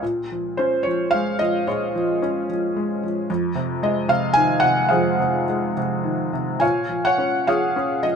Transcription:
0.02 A#2
0.32 F3
0.57 C#4 C5
0.83 F3 C#5
1.11 G#3 F5
1.39 F3 D#5
1.67 A#2 F4 G#4 C#5
1.95 F3
2.22 C#4
2.49 F3
2.76 G#3
3.03 F3
3.30 F2
3.55 C3
3.83 G#3 D#5
4.08 C3 F5
4.33 D#3 G#5
4.60 C3 F#5
4.89 G#4 C5 F5
4.93 F2
5.20 C3
5.49 G#3
5.77 C3
6.04 D#3
6.33 C3
6.60 A#2 C#5 F5 G#5
6.89 F3
7.05 C#5 F#5
7.18 C#4
7.47 F3 G#4 C#5 F5
7.76 C#4
8.03 F3 D#5

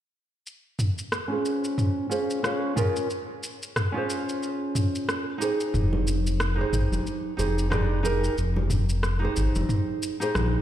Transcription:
0.47 shaker
0.79 mid tom, shaker
0.98 shaker
1.12 cross-stick, shaker
1.28 C#4 F4 G#4
1.33 C5
1.45 shaker
1.64 shaker
1.78 mid tom, shaker
2.09 C#4 F4 G#4 C5, shaker
2.30 shaker
2.43 C#4 F4 G#4 C#5, cross-stick, shaker
2.76 C#4 F4 G#4 A#4, mid tom, shaker
2.96 shaker
3.10 shaker
3.43 shaker
3.63 shaker
3.76 cross-stick, mid tom, shaker
3.92 C#4 F4 G#4
3.97 C5
4.10 shaker
4.29 shaker
4.43 shaker
4.75 mid tom, shaker
4.95 shaker
5.09 cross-stick, shaker
5.38 D#4 G4 G#4, shaker
5.44 C5
5.60 shaker
5.74 F1, mid tom, shaker
5.93 high conga
6.08 shaker
6.27 shaker
6.40 cross-stick, shaker
6.55 D#4 G4 G#4
6.61 C5
6.73 G#1, mid tom, shaker
6.91 F1, high conga, shaker
7.07 shaker
7.37 F1 D#4 G4 G#4 C5, shaker
7.59 shaker
7.70 D#4 G4 G#4 D5, cross-stick, mid tom, high conga, shaker
8.03 D#4 G4 G#4 A#4, shaker
8.24 shaker
8.37 F1, shaker
8.56 high conga
8.70 mid tom, shaker
8.89 shaker
9.03 cross-stick, shaker
9.19 D#4 G4 G#4
9.25 C5
9.36 G#1, shaker
9.55 F1, high conga, shaker
9.69 mid tom, shaker
10.03 shaker
10.20 D#4 G4 G#4 C5, shaker
10.35 A#1, cross-stick, high conga, shaker

